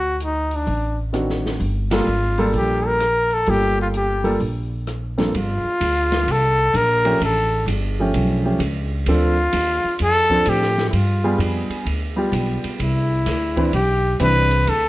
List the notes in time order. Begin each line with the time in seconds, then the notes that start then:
Already playing: D2 F#4
0.20 closed hi-hat
0.25 D#4
0.51 open hi-hat
0.55 D4
0.67 A1, open hi-hat
1.13 D#3 C4 D4 F#4, cross-stick, closed hi-hat
1.29 snare
1.46 snare
1.60 G1, open hi-hat
1.91 G3 A#3 F4 A4, snare, ride
2.07 G#1
2.38 G3 A#3 F4 A4, open hi-hat
2.53 A#1 G4, open hi-hat
2.87 A#4
3.00 cross-stick, closed hi-hat
3.31 A4, open hi-hat
3.46 G1 G3 A#3 F4 G4 A4, open hi-hat
3.81 F4
3.94 G4, closed hi-hat
4.24 G3 A#3 F4 A4, open hi-hat
4.40 A#1, open hi-hat
4.87 cross-stick, closed hi-hat
5.18 G2 F3 A#3 C4 A4, snare, open hi-hat
5.34 G1 F4, ride
5.64 muted upright bass stroke
5.81 D2, hi-hat pedal, ride
6.12 snare, ride
6.27 C2, ride
6.32 A4
6.74 A#1 A#4, hi-hat pedal, ride
7.04 F3 A3 C#4 G4, ride
7.20 A1, ride
7.24 A4
7.66 G1, hi-hat pedal, ride
8.00 F3 A3 C#4 G4
8.14 B1, ride
8.44 F3 A3 C#4 G4
8.59 C#2, hi-hat pedal, ride
9.06 D2 F3 C4 D4 A4, ride
9.11 F4
9.53 D#2, hi-hat pedal, ride
9.85 muted upright bass stroke
9.99 F2, ride
10.03 A4
10.30 F3 C4 D4 A4, kick
10.46 A2 G4, hi-hat pedal, ride
10.62 snare
10.78 snare
10.90 G2 E4, ride
10.95 F4
11.24 G3 B3 F4 G#4
11.38 F2, hi-hat pedal, ride
11.70 muted upright bass stroke, ride
11.85 D2, ride
12.16 G3 B3 F4 G4
12.32 B1, hi-hat pedal, ride
12.64 muted upright bass stroke, ride
12.79 C2 E4, ride
13.26 D2, snare, hi-hat pedal, ride
13.56 E3 C4 D4 B4, kick, ride
13.73 B1 G4, ride
14.20 C2 E3 C4 D4 B4, hi-hat pedal, ride
14.51 ride
14.66 D2 A4, ride